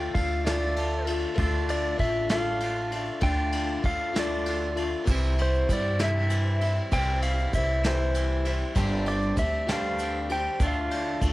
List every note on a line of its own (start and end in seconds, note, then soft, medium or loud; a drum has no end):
0.00 0.49 D3 loud
0.00 0.14 A3 medium
0.00 0.48 A3 medium
0.00 0.14 D4 medium
0.00 0.47 D4 medium
0.00 1.35 D4 medium
0.00 0.16 F4 medium
0.00 0.47 F4 medium
0.00 1.35 F4 medium
0.00 1.35 A4 medium
0.00 1.35 D5 medium
0.00 0.17 G5 loud
0.14 1.24 D2 loud
0.14 0.45 D3 medium
0.14 0.44 A3 medium
0.14 0.45 D4 medium
0.14 0.44 F4 medium
0.14 0.46 F5 loud
0.14 kick medium
0.14 ride medium
0.46 0.77 D3 medium
0.46 0.77 A3 medium
0.46 0.78 D4 medium
0.46 0.79 F4 loud
0.46 1.11 D5 medium
0.46 snare loud
0.46 ride loud
0.76 1.38 D3 medium
0.76 1.09 A3 medium
0.76 1.08 D4 medium
0.76 1.08 F4 medium
0.76 ride medium
1.07 1.38 A3 medium
1.07 1.39 D4 medium
1.07 1.40 F4 medium
1.07 ride medium
1.36 1.93 D2 loud
1.36 2.32 D3 medium
1.36 1.71 A3 loud
1.36 1.70 D4 loud
1.36 1.97 F4 loud
1.36 5.04 F4 medium
1.36 5.04 A4 medium
1.36 5.04 D5 medium
1.36 kick loud
1.36 ride loud
1.40 1.68 F4 loud
1.69 2.31 A3 medium
1.69 2.30 D4 medium
1.69 2.30 F4 medium
1.69 2.00 D5 medium
1.69 ride medium
1.96 3.08 A1 medium
1.96 2.29 D3 medium
1.96 2.30 A3 medium
1.96 2.29 D4 medium
1.96 2.28 F4 medium
1.96 2.29 E5 loud
1.96 kick medium
1.96 ride medium
2.29 2.60 D3 medium
2.29 2.62 A3 medium
2.29 2.61 D4 medium
2.29 2.62 F4 medium
2.29 3.26 F5 loud
2.29 snare loud
2.29 ride loud
2.60 3.21 D3 medium
2.60 2.93 A3 medium
2.60 2.92 D4 medium
2.60 2.91 F4 medium
2.60 ride medium
2.92 3.22 A3 medium
2.92 3.23 D4 medium
2.92 3.23 F4 medium
2.92 ride medium
3.21 3.77 D2 loud
3.21 3.84 D3 loud
3.21 3.56 A3 loud
3.21 3.55 D4 loud
3.21 3.54 F4 loud
3.21 3.87 G5 loud
3.21 kick loud
3.21 ride loud
3.52 4.15 F4 medium
3.52 ride medium
3.56 4.17 A3 medium
3.56 4.15 D4 medium
3.83 4.93 D2 medium
3.83 4.14 D3 medium
3.83 4.13 A3 medium
3.83 4.13 D4 medium
3.83 4.12 F4 medium
3.83 4.17 F5 loud
3.83 kick medium
3.83 ride medium
4.16 4.47 D3 medium
4.16 4.47 A3 medium
4.16 4.48 D4 medium
4.16 4.48 F4 loud
4.16 4.83 D5 medium
4.16 snare loud
4.16 ride loud
4.46 5.07 D3 medium
4.46 4.79 A3 medium
4.46 4.78 D4 medium
4.46 4.77 F4 loud
4.46 ride medium
4.74 5.05 A3 soft
4.74 5.06 F4 soft
4.74 ride medium
4.79 5.07 A3 medium
4.79 5.07 D4 medium
4.79 5.07 F4 medium
5.04 5.62 C2 loud
5.04 5.67 C3 medium
5.04 5.67 E3 medium
5.04 5.68 E4 medium
5.04 8.73 C5 medium
5.04 kick loud
5.04 crash loud
5.04 shaker loud
5.08 6.02 C3 medium
5.08 8.73 E3 medium
5.08 6.01 E3 loud
5.08 5.40 G3 loud
5.08 8.73 C4 medium
5.08 5.40 C4 loud
5.08 5.38 E4 loud
5.08 8.73 G4 medium
5.38 6.01 G3 medium
5.38 6.00 C4 medium
5.38 6.00 E4 medium
5.38 5.72 C5 medium
5.38 ride medium
5.54 shaker soft
5.68 6.77 G2 loud
5.68 5.99 E3 medium
5.68 5.99 G3 medium
5.68 5.99 C4 medium
5.68 5.98 E4 medium
5.68 kick medium
5.68 ride medium
5.68 shaker loud
5.73 6.02 D5 medium
5.99 6.62 C3 medium
5.99 6.28 E3 medium
5.99 6.30 G3 medium
5.99 6.30 C4 medium
5.99 6.30 E4 loud
5.99 snare loud
5.99 ride loud
6.04 6.97 E5 loud
6.29 6.91 E3 medium
6.29 6.61 G3 medium
6.29 6.61 C4 medium
6.29 6.59 E4 medium
6.29 ride medium
6.29 shaker loud
6.61 6.92 G3 medium
6.61 6.92 C4 medium
6.61 6.92 E4 medium
6.61 ride medium
6.61 shaker soft
6.91 7.46 C2 medium
6.91 7.53 C3 loud
6.91 7.54 E3 loud
6.91 7.23 G3 loud
6.91 7.23 C4 loud
6.91 7.20 E4 loud
6.91 7.21 G5 loud
6.91 kick loud
6.91 ride loud
6.91 shaker medium
7.22 7.84 G3 medium
7.22 7.82 C4 medium
7.22 7.82 E4 medium
7.22 7.54 F5 loud
7.22 ride medium
7.39 shaker soft
7.53 8.62 C2 loud
7.53 7.85 E3 medium
7.53 7.85 G3 medium
7.53 7.83 E5 medium
7.53 kick medium
7.53 ride medium
7.53 shaker medium
7.57 7.85 C4 medium
7.57 7.84 E4 medium
7.83 8.46 C3 medium
7.83 8.14 E3 medium
7.83 8.15 G3 medium
7.83 8.15 C4 medium
7.83 8.16 E4 medium
7.83 8.51 C5 medium
7.83 snare loud
7.83 ride loud
8.14 8.75 E3 medium
8.14 8.46 G3 medium
8.14 8.45 C4 medium
8.14 8.44 E4 medium
8.14 ride medium
8.14 shaker medium
8.45 8.75 G3 medium
8.45 8.75 C4 medium
8.45 8.74 E4 medium
8.45 ride medium
8.45 shaker soft
8.76 9.31 G1 loud
8.76 9.38 G2 medium
8.76 9.38 D3 loud
8.76 9.09 G3 loud
8.76 9.07 C4 loud
8.76 10.60 C4 medium
8.76 10.60 D4 medium
8.76 9.08 D4 loud
8.76 10.60 G4 medium
8.76 9.07 G4 loud
8.76 10.60 C5 medium
8.76 kick loud
8.76 ride loud
8.76 shaker loud
9.06 9.68 C4 medium
9.06 9.70 D4 medium
9.06 9.67 G4 medium
9.06 9.39 D5 medium
9.06 ride medium
9.10 9.70 G3 medium
9.22 shaker soft
9.36 10.46 D2 loud
9.36 9.67 G3 medium
9.36 9.67 C4 medium
9.36 9.66 G4 medium
9.36 9.70 E5 loud
9.36 kick medium
9.36 ride medium
9.36 shaker loud
9.68 10.31 G2 medium
9.68 10.31 D3 medium
9.68 10.00 G3 medium
9.68 10.01 C4 medium
9.68 10.02 D4 medium
9.68 10.02 G4 loud
9.68 snare loud
9.68 ride loud
9.73 10.34 F5 loud
9.99 10.33 G3 medium
9.99 10.33 C4 medium
9.99 10.33 D4 medium
9.99 ride medium
9.99 shaker loud
10.03 10.31 G4 medium
10.29 10.62 D4 medium
10.29 10.61 G4 medium
10.29 10.63 G5 loud
10.29 ride medium
10.29 shaker soft
10.34 10.61 G3 medium
10.34 10.61 C4 medium
10.60 11.15 D2 loud
10.60 11.23 D3 medium
10.60 10.93 A3 loud
10.60 11.33 D4 medium
10.60 10.92 D4 loud
10.60 11.33 F4 medium
10.60 10.91 F4 loud
10.60 11.33 A4 medium
10.60 11.33 D5 medium
10.60 kick loud
10.60 ride loud
10.60 shaker loud
10.67 11.33 F5 loud
10.91 11.33 A3 medium
10.91 11.33 D4 medium
10.91 11.33 F4 medium
10.91 ride medium
11.21 11.33 D2 loud
11.21 11.33 D3 medium
11.21 11.33 A3 medium
11.21 11.33 D4 medium
11.21 11.33 F4 medium
11.21 kick medium
11.21 ride medium
11.21 shaker loud